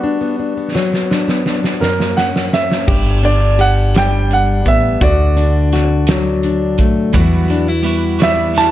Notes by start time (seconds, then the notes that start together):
Already playing: G3 B3 F#4
0.04 D4
0.21 B3
0.39 D4
0.57 B3
0.75 F#3, snare
0.93 B3, snare
1.10 D4, snare
1.28 B3, snare
1.46 D4, snare
1.64 B3, snare
1.80 F#2 A#4, snare
1.99 A#3, snare
2.17 C#4 F#5, snare
2.35 A#3, snare
2.52 C#4 E5, snare
2.70 A#3, snare
2.87 G1 G2 G4, kick, crash
3.23 D4 D5, closed hi-hat
3.59 G4 F#5, closed hi-hat
3.94 G3 G5, snare, closed hi-hat
4.30 D4 F#5, closed hi-hat
4.66 A1 B3 E5, kick, closed hi-hat
5.01 D2 D3 F#4 D5, kick, closed hi-hat
5.37 D4, closed hi-hat
5.72 F#4, snare, closed hi-hat
6.07 F#3, snare, closed hi-hat
6.43 D4, closed hi-hat
6.78 B1 A3, kick, closed hi-hat
7.13 E2 E3 G3 B3 E4 F#4, kick, closed hi-hat
7.48 B3 D4 E4 F#4, closed hi-hat
7.68 E4
7.83 G3 B3 E4 F#4, closed hi-hat
8.19 E3 G3 B3 E4 F#4, snare, closed hi-hat
8.23 E5
8.54 G3 B3 E4 F#4, snare, closed hi-hat
8.58 A5